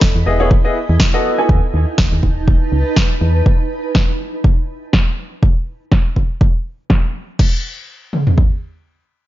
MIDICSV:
0, 0, Header, 1, 5, 480
1, 0, Start_track
1, 0, Key_signature, 4, "major"
1, 0, Tempo, 491803
1, 1456, Time_signature, 4, 2, 24, 8
1, 9049, End_track
2, 0, Start_track
2, 0, Title_t, "Ambient pad"
2, 0, Program_c, 0, 92
2, 0, Note_on_c, 0, 64, 88
2, 0, Note_on_c, 0, 75, 73
2, 0, Note_on_c, 0, 83, 78
2, 214, Note_off_c, 0, 83, 0
2, 1216, Note_off_c, 0, 64, 0
2, 1216, Note_on_c, 0, 63, 96
2, 1657, Note_on_c, 0, 81, 81
2, 1917, Note_on_c, 0, 71, 87
2, 1991, Note_off_c, 0, 75, 0
2, 3136, Note_off_c, 0, 63, 0
2, 3137, Note_off_c, 0, 81, 0
2, 3246, Note_off_c, 0, 71, 0
2, 9049, End_track
3, 0, Start_track
3, 0, Title_t, "Grand piano"
3, 0, Program_c, 1, 0
3, 256, Note_on_c, 1, 59, 75
3, 256, Note_on_c, 1, 64, 67
3, 256, Note_on_c, 1, 68, 71
3, 256, Note_on_c, 1, 75, 86
3, 371, Note_off_c, 1, 59, 0
3, 371, Note_off_c, 1, 64, 0
3, 371, Note_off_c, 1, 68, 0
3, 371, Note_off_c, 1, 75, 0
3, 390, Note_on_c, 1, 59, 88
3, 390, Note_on_c, 1, 68, 82
3, 390, Note_on_c, 1, 73, 102
3, 391, Note_on_c, 1, 64, 83
3, 490, Note_off_c, 1, 59, 0
3, 490, Note_off_c, 1, 64, 0
3, 490, Note_off_c, 1, 68, 0
3, 490, Note_off_c, 1, 73, 0
3, 630, Note_on_c, 1, 59, 83
3, 630, Note_on_c, 1, 64, 74
3, 630, Note_on_c, 1, 75, 91
3, 631, Note_on_c, 1, 68, 72
3, 730, Note_off_c, 1, 59, 0
3, 730, Note_off_c, 1, 64, 0
3, 730, Note_off_c, 1, 68, 0
3, 730, Note_off_c, 1, 75, 0
3, 1110, Note_on_c, 1, 59, 98
3, 1110, Note_on_c, 1, 69, 85
3, 1110, Note_on_c, 1, 75, 102
3, 1111, Note_on_c, 1, 66, 87
3, 1318, Note_off_c, 1, 59, 0
3, 1318, Note_off_c, 1, 66, 0
3, 1318, Note_off_c, 1, 69, 0
3, 1318, Note_off_c, 1, 75, 0
3, 1350, Note_on_c, 1, 80, 94
3, 1351, Note_on_c, 1, 59, 86
3, 1351, Note_on_c, 1, 66, 76
3, 1351, Note_on_c, 1, 69, 78
3, 1526, Note_off_c, 1, 59, 0
3, 1526, Note_off_c, 1, 66, 0
3, 1526, Note_off_c, 1, 69, 0
3, 1526, Note_off_c, 1, 80, 0
3, 9049, End_track
4, 0, Start_track
4, 0, Title_t, "FM bass"
4, 0, Program_c, 2, 39
4, 16, Note_on_c, 2, 28, 93
4, 126, Note_off_c, 2, 28, 0
4, 151, Note_on_c, 2, 40, 84
4, 237, Note_off_c, 2, 40, 0
4, 256, Note_on_c, 2, 28, 92
4, 592, Note_off_c, 2, 28, 0
4, 873, Note_on_c, 2, 40, 94
4, 958, Note_off_c, 2, 40, 0
4, 1456, Note_on_c, 2, 39, 102
4, 1566, Note_off_c, 2, 39, 0
4, 1698, Note_on_c, 2, 39, 87
4, 1807, Note_off_c, 2, 39, 0
4, 1936, Note_on_c, 2, 27, 92
4, 2046, Note_off_c, 2, 27, 0
4, 2072, Note_on_c, 2, 39, 87
4, 2157, Note_off_c, 2, 39, 0
4, 2177, Note_on_c, 2, 27, 90
4, 2512, Note_off_c, 2, 27, 0
4, 2656, Note_on_c, 2, 37, 83
4, 2766, Note_off_c, 2, 37, 0
4, 3136, Note_on_c, 2, 40, 89
4, 3338, Note_off_c, 2, 40, 0
4, 9049, End_track
5, 0, Start_track
5, 0, Title_t, "Drums"
5, 13, Note_on_c, 9, 38, 123
5, 16, Note_on_c, 9, 36, 114
5, 111, Note_off_c, 9, 38, 0
5, 114, Note_off_c, 9, 36, 0
5, 496, Note_on_c, 9, 36, 116
5, 594, Note_off_c, 9, 36, 0
5, 973, Note_on_c, 9, 38, 126
5, 976, Note_on_c, 9, 36, 122
5, 1071, Note_off_c, 9, 38, 0
5, 1074, Note_off_c, 9, 36, 0
5, 1456, Note_on_c, 9, 36, 118
5, 1554, Note_off_c, 9, 36, 0
5, 1933, Note_on_c, 9, 38, 123
5, 1936, Note_on_c, 9, 36, 122
5, 2031, Note_off_c, 9, 38, 0
5, 2034, Note_off_c, 9, 36, 0
5, 2177, Note_on_c, 9, 36, 64
5, 2274, Note_off_c, 9, 36, 0
5, 2417, Note_on_c, 9, 36, 120
5, 2514, Note_off_c, 9, 36, 0
5, 2893, Note_on_c, 9, 38, 127
5, 2897, Note_on_c, 9, 36, 127
5, 2991, Note_off_c, 9, 38, 0
5, 2994, Note_off_c, 9, 36, 0
5, 3377, Note_on_c, 9, 36, 120
5, 3474, Note_off_c, 9, 36, 0
5, 3854, Note_on_c, 9, 38, 113
5, 3857, Note_on_c, 9, 36, 117
5, 3951, Note_off_c, 9, 38, 0
5, 3954, Note_off_c, 9, 36, 0
5, 4336, Note_on_c, 9, 36, 120
5, 4434, Note_off_c, 9, 36, 0
5, 4814, Note_on_c, 9, 38, 118
5, 4816, Note_on_c, 9, 36, 119
5, 4911, Note_off_c, 9, 38, 0
5, 4914, Note_off_c, 9, 36, 0
5, 5296, Note_on_c, 9, 36, 117
5, 5394, Note_off_c, 9, 36, 0
5, 5773, Note_on_c, 9, 38, 109
5, 5776, Note_on_c, 9, 36, 109
5, 5871, Note_off_c, 9, 38, 0
5, 5873, Note_off_c, 9, 36, 0
5, 6016, Note_on_c, 9, 36, 61
5, 6113, Note_off_c, 9, 36, 0
5, 6256, Note_on_c, 9, 36, 113
5, 6353, Note_off_c, 9, 36, 0
5, 6733, Note_on_c, 9, 38, 112
5, 6735, Note_on_c, 9, 36, 121
5, 6830, Note_off_c, 9, 38, 0
5, 6833, Note_off_c, 9, 36, 0
5, 7215, Note_on_c, 9, 36, 107
5, 7215, Note_on_c, 9, 49, 80
5, 7313, Note_off_c, 9, 36, 0
5, 7313, Note_off_c, 9, 49, 0
5, 7935, Note_on_c, 9, 47, 60
5, 8033, Note_off_c, 9, 47, 0
5, 8070, Note_on_c, 9, 43, 76
5, 8168, Note_off_c, 9, 43, 0
5, 8176, Note_on_c, 9, 36, 84
5, 8273, Note_off_c, 9, 36, 0
5, 9049, End_track
0, 0, End_of_file